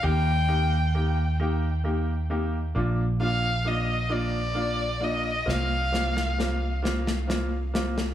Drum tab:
SD |------------|------------|o-ooo-ooo-oo|